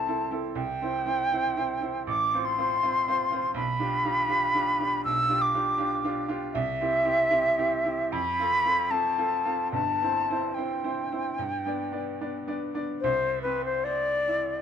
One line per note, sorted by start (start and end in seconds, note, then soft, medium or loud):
0.00 0.55 C2 medium
0.00 0.07 C4 medium
0.00 0.08 E4 medium
0.00 0.09 A4 medium
0.00 0.32 A5 medium
0.07 0.29 C4 medium
0.07 0.30 E4 medium
0.07 0.30 A4 medium
0.31 0.54 C4 medium
0.31 0.54 E4 medium
0.31 0.54 A4 medium
0.55 0.80 C2 medium
0.55 2.03 G5 medium
0.82 1.04 C4 medium
0.82 1.05 E4 medium
0.82 1.05 C5 medium
1.05 1.29 C4 medium
1.05 1.29 E4 medium
1.05 1.29 C5 medium
1.31 1.54 C4 medium
1.31 1.55 E4 medium
1.31 1.55 C5 medium
1.56 1.79 C4 medium
1.56 1.79 E4 medium
1.56 1.80 C5 medium
1.80 2.04 C4 medium
1.80 2.05 E4 medium
1.80 2.05 C5 medium
2.07 2.32 A1 medium
2.07 2.46 D6 loud
2.34 2.56 C4 medium
2.34 2.57 F4 medium
2.34 2.56 C5 medium
2.45 3.55 C6 medium
2.58 2.81 C4 medium
2.58 2.81 F4 medium
2.58 2.81 C5 medium
2.83 3.05 C4 medium
2.83 3.05 F4 medium
2.83 3.06 C5 medium
3.07 3.29 C4 medium
3.07 3.30 F4 medium
3.07 3.30 C5 medium
3.31 3.54 C4 medium
3.31 3.54 F4 medium
3.31 3.55 C5 medium
3.54 3.80 B1 medium
3.54 5.02 B5 loud
3.79 4.03 D4 medium
3.79 4.03 F4 medium
3.79 4.03 G4 medium
4.05 4.27 D4 medium
4.05 4.27 F4 medium
4.05 4.28 G4 medium
4.28 4.52 D4 medium
4.28 4.52 F4 medium
4.28 4.53 G4 medium
4.55 4.78 D4 medium
4.55 4.78 F4 medium
4.55 4.78 G4 medium
4.79 5.02 D4 medium
4.79 5.03 F4 medium
4.79 5.03 G4 medium
5.05 5.29 B1 medium
5.05 5.43 E6 loud
5.29 5.52 D4 medium
5.29 5.52 F4 medium
5.29 5.53 G4 medium
5.42 6.28 D6 medium
5.54 5.76 D4 medium
5.54 5.77 F4 medium
5.54 5.77 G4 medium
5.78 6.01 D4 medium
5.78 6.01 F4 medium
5.78 6.01 G4 medium
6.04 6.27 D4 medium
6.04 6.27 F4 medium
6.04 6.27 G4 medium
6.28 6.52 D4 medium
6.28 6.52 F4 medium
6.28 6.52 G4 medium
6.53 6.80 C2 medium
6.53 8.14 E5 loud
6.81 7.03 C4 medium
6.81 7.04 E4 medium
6.81 7.04 G4 medium
7.05 7.29 C4 medium
7.05 7.29 E4 medium
7.05 7.29 G4 medium
7.31 7.55 C4 medium
7.31 7.55 E4 medium
7.31 7.55 G4 medium
7.58 7.83 C4 medium
7.58 7.83 E4 medium
7.58 7.84 G4 medium
7.85 8.10 C4 medium
7.85 8.10 E4 medium
7.85 8.10 G4 medium
8.12 8.39 F2 medium
8.12 8.92 B5 loud
8.39 8.63 C4 medium
8.39 8.63 F4 medium
8.39 8.64 A4 medium
8.64 8.89 C4 medium
8.64 8.89 F4 soft
8.64 8.90 A4 medium
8.91 9.15 C4 medium
8.91 9.15 F4 medium
8.91 9.16 A4 medium
8.91 9.72 A5 medium
9.18 9.43 C4 medium
9.18 9.43 F4 medium
9.18 9.43 A4 medium
9.45 9.70 C4 medium
9.45 9.70 F4 medium
9.45 9.71 A4 medium
9.72 10.00 G1 medium
9.72 10.00 G2 medium
9.72 10.56 A5 loud
10.02 10.26 C4 soft
10.02 10.27 E4 soft
10.02 10.27 C5 medium
10.30 10.54 C4 medium
10.30 10.54 E4 medium
10.30 10.55 C5 medium
10.54 10.81 C4 medium
10.54 10.82 E4 medium
10.54 10.82 C5 medium
10.54 12.59 G5 medium
10.84 11.08 C4 medium
10.84 11.09 E4 medium
10.84 11.09 C5 medium
11.11 11.36 C4 medium
11.11 11.36 E4 soft
11.11 11.36 C5 medium
11.39 11.65 G2 medium
11.66 11.90 B3 soft
11.66 11.90 D4 medium
11.66 11.90 D5 medium
11.92 12.16 B3 soft
11.92 12.16 D4 medium
11.92 12.17 D5 medium
12.21 12.45 B3 medium
12.21 12.45 D4 medium
12.21 12.45 D5 medium
12.47 12.71 B3 medium
12.47 12.72 D4 medium
12.47 12.72 D5 medium
12.74 12.99 B3 medium
12.74 12.99 D4 medium
12.74 12.99 D5 medium
13.01 14.62 C2 medium
13.01 13.39 C5 loud
13.42 14.09 C4 medium
13.42 13.62 B4 medium
13.65 13.86 C5 medium
13.84 14.50 C5 medium
13.84 14.62 D5 loud
14.28 14.62 E4 medium